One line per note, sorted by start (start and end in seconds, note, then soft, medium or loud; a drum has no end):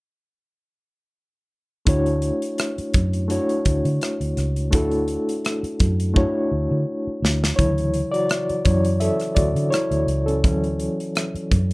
1.85 2.30 D2 medium
1.85 3.21 A3 medium
1.85 3.21 D4 medium
1.85 3.22 E4 medium
1.85 3.22 F#4 medium
1.85 3.22 C#5 medium
1.85 kick medium
1.85 closed hi-hat medium
2.06 closed hi-hat soft
2.22 closed hi-hat medium
2.42 closed hi-hat medium
2.58 cross-stick loud
2.58 closed hi-hat medium
2.78 muted fingered electric bass stroke soft
2.78 closed hi-hat soft
2.94 3.37 F#2 medium
2.94 kick medium
2.94 closed hi-hat medium
3.13 closed hi-hat medium
3.28 4.63 A3 medium
3.28 4.64 D4 medium
3.28 4.65 E4 medium
3.28 4.65 F#4 medium
3.28 4.65 C#5 medium
3.28 closed hi-hat medium
3.49 closed hi-hat soft
3.65 3.81 D2 medium
3.65 kick medium
3.65 closed hi-hat medium
3.85 3.98 D3 medium
3.85 closed hi-hat soft
4.01 cross-stick medium
4.01 closed hi-hat medium
4.20 4.33 D2 medium
4.20 closed hi-hat soft
4.37 4.73 C#2 medium
4.37 cross-stick soft
4.37 closed hi-hat medium
4.56 closed hi-hat soft
4.71 5.16 D2 medium
4.71 6.06 A3 medium
4.71 6.07 D4 medium
4.71 6.07 E4 medium
4.71 6.08 F#4 medium
4.71 6.08 A4 medium
4.71 kick medium
4.71 closed hi-hat medium
4.91 closed hi-hat soft
5.08 closed hi-hat medium
5.29 closed hi-hat medium
5.45 cross-stick medium
5.45 closed hi-hat medium
5.63 muted fingered electric bass stroke soft
5.63 closed hi-hat soft
5.80 6.23 F#2 medium
5.80 kick medium
5.80 closed hi-hat medium
6.00 closed hi-hat medium
6.14 7.49 A3 medium
6.14 7.50 D4 medium
6.14 7.50 E4 medium
6.14 7.51 F#4 medium
6.14 7.51 C#5 medium
6.14 kick medium
6.51 6.66 D2 medium
6.71 6.84 D3 medium
7.07 muted fingered electric bass stroke soft
7.22 7.50 D2 medium
7.22 snare medium
7.44 snare medium
7.56 8.02 D2 medium
7.56 10.40 C#3 medium
7.56 8.64 E3 soft
7.56 8.65 F#3 soft
7.56 8.10 E4 medium
7.56 8.08 C#5 medium
7.56 kick medium
7.56 closed hi-hat medium
7.78 closed hi-hat soft
7.94 closed hi-hat medium
8.12 8.62 F#4 medium
8.12 8.66 D5 loud
8.12 closed hi-hat soft
8.29 cross-stick medium
8.29 closed hi-hat medium
8.49 muted fingered electric bass stroke soft
8.49 closed hi-hat soft
8.65 9.09 F#2 medium
8.65 8.98 E3 soft
8.65 8.98 F#3 soft
8.65 8.98 C#4 soft
8.65 8.99 E4 soft
8.65 9.02 C#5 medium
8.65 kick medium
8.65 closed hi-hat medium
8.85 closed hi-hat medium
9.00 9.35 A4 medium
9.00 9.34 E5 medium
9.00 closed hi-hat medium
9.20 cross-stick soft
9.20 closed hi-hat soft
9.35 9.52 D2 medium
9.35 9.70 F#4 medium
9.35 9.73 D5 medium
9.35 kick medium
9.35 closed hi-hat medium
9.55 9.68 D3 medium
9.55 closed hi-hat soft
9.70 10.24 E4 medium
9.70 10.23 C#5 medium
9.70 cross-stick medium
9.70 closed hi-hat medium
9.91 10.04 D2 medium
9.91 closed hi-hat soft
10.07 10.44 C#2 medium
10.07 closed hi-hat medium
10.26 10.44 C#4 medium
10.26 11.73 A4 medium
10.26 closed hi-hat soft
10.44 10.87 D2 medium
10.44 11.73 E3 soft
10.44 11.73 F#3 soft
10.44 11.73 C#4 medium
10.44 kick medium
10.44 closed hi-hat medium
10.64 closed hi-hat soft
10.80 closed hi-hat medium
11.00 closed hi-hat soft
11.15 cross-stick medium
11.15 closed hi-hat medium
11.35 muted fingered electric bass stroke soft
11.35 closed hi-hat soft
11.51 11.73 F#2 medium
11.51 kick medium
11.51 closed hi-hat medium